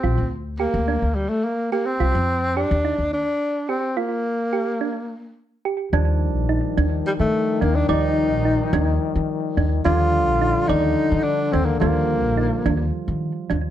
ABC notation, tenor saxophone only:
X:1
M:7/8
L:1/16
Q:1/4=107
K:Eblyd
V:1 name="Tenor saxophone"
C2 z2 B,4 G, A, B,2 B, C- | C4 D4 D4 C2 | B,8- B,2 z4 | z8 G, A,3 B, D |
E8 z6 | F6 E4 D2 C B, | B,8 z6 |]